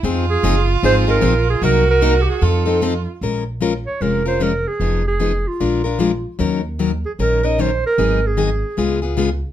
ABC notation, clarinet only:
X:1
M:4/4
L:1/16
Q:"Swing" 1/4=151
K:Bbm
V:1 name="Clarinet"
z2 A4 z2 c2 B4 A2 | B2 B3- B/2 =G/2 A2 =A6 z2 | z6 d2 B2 c2 B2 A2- | A2 A4 F8 z2 |
z6 A2 B2 e2 c2 B2- | B2 A8 z6 |]